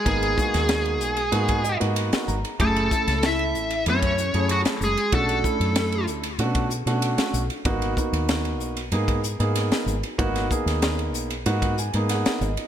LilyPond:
<<
  \new Staff \with { instrumentName = "Lead electric guitar" } { \time 4/4 \key gis \phrygian \tempo 4 = 95 gis'2~ gis'8. r4 r16 | a'4 e''4 cis''4 fis'8 gis'8 | a'4. r2 r8 | r1 |
r1 | }
  \new Staff \with { instrumentName = "Grand piano" } { \time 4/4 \key gis \phrygian << { r2 r8 dis''8 fis''8 ais''8 | r1 | r1 | r1 |
r2 r8 gis''8 fis''8 dis''8 | } \\ { <ais b dis' gis'>8 <ais b dis' fis'>4~ <ais b dis' fis'>16 r16 <ais b dis' fis'>8 <dis' fis'>16 <ais b dis' fis'>8. r16 <dis' gis'>16 | <a cis' e' gis'>8 <a cis' e' a'>4~ <a cis' e' a'>16 r16 <a cis' e' a'>8 <e' gis'>16 <a cis' e' gis'>8. r16 <e' fis'>16 | <a cis' d' fis'>8 <a cis' d' e'>4~ <a cis' d' e'>16 r16 <a cis' d' fis'>8 <d' gis'>16 <a cis' d' fis'>8. r16 <d' fis'>16 | <ais b dis' fis'>8 <ais b dis' fis'>4~ <ais b dis' fis'>16 r16 <ais b dis' gis'>8 <dis' gis'>16 <ais b dis' gis'>8. r16 <dis' fis'>16 |
<ais b dis' fis'>8 <ais b dis' gis'>4~ <ais b dis' gis'>16 r16 <ais b dis' fis'>8 <dis' gis'>16 <ais b dis' gis'>8. r16 <dis' fis'>16 | } >> }
  \new Staff \with { instrumentName = "Hollow-body jazz guitar" } { \time 4/4 \key gis \phrygian gis2~ gis8. r4 r16 | a4 e'4 cis'4 fis8 gis8 | a4. r2 r8 | r1 |
r1 | }
  \new Staff \with { instrumentName = "Fingered electric bass" } { \clef bass \time 4/4 \key gis \phrygian gis,,8 r16 dis,8. b,,8 gis,8. gis,8 r16 gis,,16 r16 | fis,,8 r16 cis,8. a,,8 fis,8. fis,8 r16 fis,,16 r16 | b,,8 r16 fis,8. d,8 b,8. b,8 r16 b,,16 r16 | gis,,8 r16 dis,8. b,,8 gis,8. gis,8 r16 gis,,16 r16 |
gis,,8 r16 dis,8. b,,8 gis,8. gis,8 r16 gis,,16 r16 | }
  \new DrumStaff \with { instrumentName = "Drums" } \drummode { \time 4/4 <bd cymr>16 cymr16 <hhp bd>16 <cymr sn>16 <cymr sn>16 cymr16 hhp16 cymr16 cymr16 <bd cymr>16 hhp16 cymr16 cymr16 <cymr sn>16 hhp16 cymr16 | <bd cymr>16 cymr16 <hhp bd>16 <cymr sn>16 <cymr sn>16 cymr16 hhp16 cymr16 cymr16 <bd cymr>16 hhp16 cymr16 cymr16 <cymr sn>16 hhp16 cymr16 | <bd cymr>16 cymr16 <hhp bd>16 cymr16 <cymr sn>16 cymr16 hhp16 cymr16 cymr16 <bd cymr>16 hhp16 cymr16 cymr16 <cymr sn>16 hhp16 cymr16 | <bd cymr>16 cymr16 <hhp bd>16 cymr16 <cymr sn>16 cymr16 hhp16 cymr16 cymr16 <bd cymr>16 hhp16 cymr16 <cymr sn>16 <cymr sn>16 hhp16 cymr16 |
<bd cymr>16 <cymr sn>16 <hhp bd>16 <cymr sn>16 <cymr sn>16 cymr16 hhp16 cymr16 cymr16 <bd cymr>16 hhp16 cymr16 <cymr sn>16 <cymr sn>16 hhp16 cymr16 | }
>>